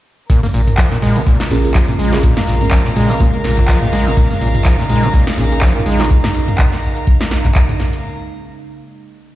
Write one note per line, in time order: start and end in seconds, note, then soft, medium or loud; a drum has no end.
0.30 0.41 A#2 loud
0.30 8.00 C#3 medium
0.30 8.00 G#3 medium
0.30 8.00 A#3 medium
0.30 4.13 F4 medium
0.30 8.04 A#4 medium
0.30 kick loud
0.30 closed hi-hat medium
0.30 tambourine medium
0.43 0.47 A#3 medium
0.43 snare soft
0.43 closed hi-hat soft
0.43 mid tom medium
0.43 tambourine soft
0.54 0.70 A#1 loud
0.54 0.61 A#2 medium
0.54 closed hi-hat medium
0.54 open hi-hat loud
0.54 tambourine medium
0.67 closed hi-hat medium
0.67 mid tom medium
0.67 tambourine soft
0.78 0.89 F3 loud
0.78 kick loud
0.78 snare loud
0.78 clap loud
0.78 closed hi-hat medium
0.78 tambourine medium
0.92 0.98 A#2 medium
0.92 snare soft
0.92 tambourine soft
1.02 1.19 A#2 loud
1.02 1.17 G#3 loud
1.02 8.04 F5 medium
1.02 closed hi-hat medium
1.02 open hi-hat medium
1.02 tambourine medium
1.15 1.22 A#2 loud
1.15 closed hi-hat soft
1.15 closed hi-hat medium
1.15 tambourine soft
1.26 1.38 A#2 loud
1.26 kick loud
1.26 closed hi-hat medium
1.26 tambourine medium
1.40 1.44 A#3 medium
1.40 snare medium
1.40 closed hi-hat soft
1.40 tambourine soft
1.50 1.67 A#1 medium
1.50 1.58 A#2 medium
1.50 1.62 A#3 medium
1.50 1.62 C#4 medium
1.50 1.62 F4 medium
1.50 1.62 G#4 medium
1.50 closed hi-hat medium
1.50 open hi-hat loud
1.50 tambourine loud
1.64 1.84 A#3 medium
1.64 1.84 C#4 medium
1.64 1.84 F4 medium
1.64 1.84 G#4 medium
1.64 closed hi-hat medium
1.64 closed hi-hat soft
1.64 tambourine soft
1.74 1.86 F3 loud
1.74 8.04 A#5 medium
1.74 kick loud
1.74 snare loud
1.74 clap loud
1.74 closed hi-hat medium
1.74 tambourine medium
1.88 1.94 A#2 medium
1.88 2.09 A#3 medium
1.88 2.09 C#4 medium
1.88 2.09 F4 medium
1.88 2.09 A#4 medium
1.88 closed hi-hat soft
1.88 mid tom medium
1.88 tambourine soft
1.99 2.15 A#1 medium
1.99 2.14 G#3 loud
1.99 closed hi-hat medium
1.99 open hi-hat medium
1.99 tambourine loud
2.13 2.19 A#2 loud
2.13 2.25 A#3 loud
2.13 2.25 C#4 medium
2.13 2.25 F4 medium
2.13 2.25 G#4 loud
2.13 snare medium
2.13 snare soft
2.13 closed hi-hat medium
2.13 tambourine soft
2.23 2.34 A#2 loud
2.23 kick loud
2.23 closed hi-hat medium
2.23 tambourine medium
2.37 2.40 A#3 medium
2.37 snare medium
2.37 closed hi-hat soft
2.37 mid tom medium
2.37 tambourine soft
2.47 2.64 A#1 loud
2.47 2.55 A#2 medium
2.47 snare soft
2.47 closed hi-hat medium
2.47 open hi-hat loud
2.47 tambourine medium
2.61 2.74 A#3 medium
2.61 2.74 C#4 medium
2.61 2.74 F4 medium
2.61 2.74 A#4 medium
2.61 closed hi-hat medium
2.61 mid tom medium
2.61 tambourine soft
2.71 2.83 F3 loud
2.71 kick loud
2.71 snare loud
2.71 clap loud
2.71 closed hi-hat medium
2.71 tambourine medium
2.85 2.91 A#2 medium
2.85 snare soft
2.85 closed hi-hat soft
2.85 tambourine soft
2.96 3.12 A#2 loud
2.96 3.11 G#3 loud
2.96 closed hi-hat medium
2.96 open hi-hat medium
2.96 tambourine medium
3.09 3.15 A#2 loud
3.09 snare medium
3.09 closed hi-hat medium
3.09 tambourine soft
3.20 3.31 A#2 loud
3.20 3.43 A#3 loud
3.20 3.43 C#4 medium
3.20 3.43 F4 medium
3.20 3.43 G#4 loud
3.20 kick loud
3.20 closed hi-hat medium
3.20 tambourine medium
3.33 3.37 A#3 medium
3.33 tambourine soft
3.44 3.61 A#1 loud
3.44 3.52 A#2 medium
3.44 snare medium
3.44 closed hi-hat medium
3.44 open hi-hat loud
3.44 tambourine medium
3.57 kick medium
3.57 clap soft
3.57 closed hi-hat medium
3.57 closed hi-hat soft
3.57 mid tom medium
3.57 tambourine soft
3.68 3.80 F3 loud
3.68 kick loud
3.68 snare loud
3.68 clap loud
3.68 closed hi-hat medium
3.68 tambourine medium
3.82 3.88 A#2 medium
3.82 closed hi-hat soft
3.82 mid tom medium
3.82 tambourine soft
3.93 4.09 A#1 medium
3.93 4.08 G#3 loud
3.93 snare soft
3.93 closed hi-hat medium
3.93 open hi-hat medium
3.93 tambourine medium
4.06 4.12 A#2 loud
4.06 snare medium
4.06 closed hi-hat medium
4.06 tambourine soft
4.17 4.28 A#2 loud
4.17 8.00 D#4 medium
4.17 kick loud
4.17 closed hi-hat medium
4.17 closed hi-hat loud
4.17 tambourine medium
4.30 4.34 A#3 medium
4.30 snare soft
4.30 closed hi-hat soft
4.30 mid tom medium
4.30 tambourine soft
4.41 4.57 A#1 loud
4.41 4.48 A#2 medium
4.41 closed hi-hat medium
4.41 open hi-hat loud
4.41 tambourine medium
4.54 closed hi-hat medium
4.54 mid tom medium
4.54 tambourine soft
4.65 4.76 F3 loud
4.65 kick loud
4.65 snare loud
4.65 clap loud
4.65 closed hi-hat medium
4.65 tambourine medium
4.79 4.85 A#2 medium
4.79 snare soft
4.79 tambourine soft
4.89 5.06 A#2 loud
4.89 5.04 G#3 loud
4.89 closed hi-hat medium
4.89 open hi-hat loud
4.89 tambourine medium
5.03 5.09 A#2 loud
5.03 closed hi-hat medium
5.03 closed hi-hat soft
5.03 tambourine soft
5.14 5.25 A#2 loud
5.14 kick loud
5.14 closed hi-hat medium
5.14 tambourine medium
5.27 5.31 A#3 medium
5.27 snare medium
5.27 closed hi-hat soft
5.27 tambourine soft
5.38 5.54 A#1 loud
5.38 5.45 A#2 medium
5.38 5.49 A#3 medium
5.38 5.49 C#4 medium
5.38 5.49 F4 medium
5.38 5.49 G#4 medium
5.38 closed hi-hat medium
5.38 open hi-hat loud
5.38 tambourine medium
5.51 5.71 A#3 medium
5.51 5.71 C#4 medium
5.51 5.71 F4 medium
5.51 5.71 G#4 medium
5.51 closed hi-hat soft
5.51 tambourine soft
5.61 5.73 F3 loud
5.61 kick loud
5.61 snare loud
5.61 clap loud
5.61 closed hi-hat medium
5.61 tambourine medium
5.75 5.81 A#2 medium
5.75 5.96 A#3 medium
5.75 5.96 C#4 medium
5.75 5.96 F4 medium
5.75 5.96 A#4 medium
5.75 closed hi-hat soft
5.75 mid tom medium
5.75 tambourine soft
5.86 6.02 A#1 medium
5.86 6.01 G#3 loud
5.86 closed hi-hat medium
5.86 open hi-hat medium
5.86 tambourine medium
6.00 6.06 A#2 loud
6.00 6.12 A#3 loud
6.00 6.12 C#4 medium
6.00 6.12 F4 loud
6.00 6.12 G#4 loud
6.00 snare medium
6.00 snare soft
6.00 closed hi-hat medium
6.00 tambourine soft
6.10 kick loud
6.10 closed hi-hat medium
6.24 snare medium
6.24 closed hi-hat soft
6.24 mid tom medium
6.35 open hi-hat loud
6.48 closed hi-hat medium
6.48 mid tom loud
6.58 kick loud
6.58 clap loud
6.58 closed hi-hat medium
6.72 snare soft
6.83 open hi-hat medium
6.96 closed hi-hat soft
7.07 kick loud
7.07 closed hi-hat medium
7.21 snare medium
7.21 closed hi-hat soft
7.31 snare medium
7.31 open hi-hat loud
7.44 kick medium
7.44 clap soft
7.44 closed hi-hat soft
7.44 mid tom medium
7.55 kick loud
7.55 clap loud
7.55 closed hi-hat medium
7.69 closed hi-hat soft
7.69 mid tom medium
7.80 snare soft
7.80 open hi-hat medium
7.93 closed hi-hat soft